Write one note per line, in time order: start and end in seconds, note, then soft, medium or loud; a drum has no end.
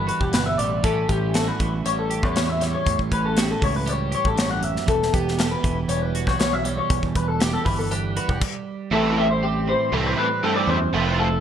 0.00 0.81 E2 medium
0.00 0.84 E3 soft
0.00 0.59 G3 medium
0.00 0.84 B3 medium
0.07 0.80 F#4 soft
0.07 0.20 B4 medium
0.07 closed hi-hat medium
0.20 0.31 E1 medium
0.20 0.33 G4 medium
0.20 kick medium
0.32 0.55 G1 medium
0.32 0.81 B2 medium
0.32 0.46 B4 medium
0.32 snare medium
0.32 closed hi-hat medium
0.46 0.58 E5 medium
0.58 0.82 A1 medium
0.58 0.85 G3 soft
0.58 0.84 D5 medium
0.58 closed hi-hat medium
0.84 1.04 A1 medium
0.84 2.83 A2 medium
0.84 1.59 E3 medium
0.84 1.85 G3 medium
0.84 1.09 C#4 medium
0.84 1.34 G4 medium
0.84 1.09 A4 medium
0.84 kick loud
0.84 closed hi-hat medium
1.09 1.51 A1 medium
1.09 2.83 C#4 soft
1.09 1.34 G4 medium
1.09 kick medium
1.09 closed hi-hat medium
1.34 2.10 F#4 medium
1.34 1.47 A4 medium
1.34 snare loud
1.34 closed hi-hat medium
1.47 1.73 B4 medium
1.59 1.81 A1 medium
1.59 3.40 E3 medium
1.59 kick medium
1.59 closed hi-hat medium
1.84 2.23 A1 medium
1.84 2.60 G3 medium
1.84 1.99 C#5 medium
1.84 closed hi-hat medium
1.99 2.24 A4 medium
2.10 2.89 G4 medium
2.10 closed hi-hat medium
2.23 2.75 E2 medium
2.23 2.35 C#5 medium
2.23 kick medium
2.35 2.83 E2 medium
2.35 2.49 C#5 medium
2.35 snare loud
2.35 closed hi-hat medium
2.49 2.62 E5 medium
2.60 3.86 G3 medium
2.60 2.73 C#5 medium
2.60 snare soft
2.60 closed hi-hat medium
2.75 2.99 C#5 medium
2.86 2.97 E2 loud
2.86 4.35 A2 medium
2.86 kick loud
2.86 closed hi-hat medium
2.99 3.09 A1 medium
2.99 kick medium
3.11 3.53 A1 medium
3.11 4.85 C#4 medium
3.11 3.25 B4 medium
3.11 kick medium
3.11 closed hi-hat medium
3.25 3.39 A4 medium
3.37 4.11 F#4 medium
3.37 3.50 G4 medium
3.37 snare loud
3.37 closed hi-hat medium
3.51 3.63 A4 medium
3.61 4.14 C#2 medium
3.61 5.63 E3 medium
3.61 3.76 C#5 medium
3.61 kick medium
3.61 open hi-hat medium
3.76 3.89 B4 medium
3.86 5.88 G3 medium
3.86 4.14 C#5 medium
3.86 closed hi-hat medium
4.12 5.38 G4 medium
4.12 4.26 C#5 medium
4.12 closed hi-hat medium
4.25 4.77 A1 medium
4.25 4.39 A4 medium
4.25 kick medium
4.36 4.62 G2 medium
4.36 4.50 C#5 medium
4.36 snare loud
4.36 closed hi-hat medium
4.51 4.64 F#5 medium
4.60 4.85 F#2 medium
4.60 4.89 E5 medium
4.60 closed hi-hat medium
4.76 snare soft
4.86 5.09 E1 medium
4.86 6.86 E2 medium
4.86 5.13 A4 medium
4.86 kick loud
4.86 closed hi-hat medium
5.03 snare soft
5.13 5.55 E1 medium
5.13 7.16 B3 medium
5.13 5.38 G4 medium
5.13 kick medium
5.13 closed hi-hat medium
5.28 snare soft
5.38 6.15 G4 medium
5.38 5.51 A4 medium
5.38 snare loud
5.38 closed hi-hat medium
5.51 5.77 B4 medium
5.63 5.85 E1 medium
5.63 6.87 E3 medium
5.63 kick medium
5.63 closed hi-hat medium
5.88 6.27 E1 medium
5.88 6.63 G3 medium
5.88 6.02 C#5 medium
5.88 closed hi-hat medium
6.02 6.27 B4 medium
6.15 6.88 F#4 medium
6.15 closed hi-hat medium
6.27 6.79 B1 medium
6.27 6.39 C#5 medium
6.27 kick medium
6.27 snare soft
6.38 6.87 B2 medium
6.38 6.53 C#5 medium
6.38 snare loud
6.38 closed hi-hat medium
6.53 6.66 E5 medium
6.64 7.90 G3 medium
6.64 6.77 C#5 medium
6.64 closed hi-hat medium
6.78 7.03 C#5 medium
6.90 7.01 B1 loud
6.90 8.38 E2 medium
6.90 kick loud
6.90 closed hi-hat medium
7.02 7.13 E1 medium
7.02 kick medium
7.15 7.57 E1 medium
7.15 7.28 B4 medium
7.15 kick medium
7.15 closed hi-hat medium
7.28 7.41 A4 medium
7.40 8.16 G4 medium
7.40 7.53 G4 medium
7.40 snare loud
7.40 closed hi-hat medium
7.53 7.65 A4 medium
7.65 8.18 G1 medium
7.65 8.38 E3 medium
7.65 7.78 B4 medium
7.65 kick medium
7.65 open hi-hat medium
7.78 7.91 A4 medium
7.91 9.16 G3 medium
7.91 8.16 B4 medium
7.91 closed hi-hat medium
8.16 8.39 F#4 medium
8.16 8.29 B4 medium
8.16 closed hi-hat medium
8.29 8.39 E1 medium
8.29 8.42 G4 medium
8.29 kick medium
8.41 kick medium
8.41 crash medium
8.91 9.74 A1 medium
8.91 10.43 A2 medium
8.91 9.24 E3 medium
8.91 9.25 A3 medium
8.91 9.25 C4 medium
8.91 10.94 E4 medium
8.91 9.25 E4 medium
8.91 9.18 A4 loud
9.17 9.92 G3 medium
9.17 9.30 E5 medium
9.31 9.43 C5 medium
9.43 10.18 C4 medium
9.43 9.68 G4 medium
9.67 10.97 E3 medium
9.67 9.93 C5 medium
9.92 10.13 C2 medium
9.92 10.25 E3 medium
9.92 10.94 G3 medium
9.92 10.26 A3 medium
9.92 10.26 C4 medium
9.92 10.26 E4 medium
9.92 10.06 A4 medium
10.06 10.18 C5 medium
10.18 11.40 C4 medium
10.18 10.43 B4 medium
10.43 10.68 G2 medium
10.43 10.76 E3 medium
10.43 10.76 A3 medium
10.43 10.76 C4 medium
10.43 10.76 E4 loud
10.43 10.55 A4 medium
10.56 10.68 D5 medium
10.68 10.88 E2 loud
10.68 10.93 F#2 medium
10.68 10.94 C5 medium
10.93 11.40 F1 loud
10.93 11.40 F2 medium
10.93 11.26 F3 medium
10.93 11.26 A3 medium
10.93 11.27 C4 medium
10.93 11.40 E4 medium
10.93 11.26 F4 loud
10.93 11.06 A4 loud
11.06 11.19 B4 medium
11.19 11.40 A3 medium
11.19 11.40 A4 medium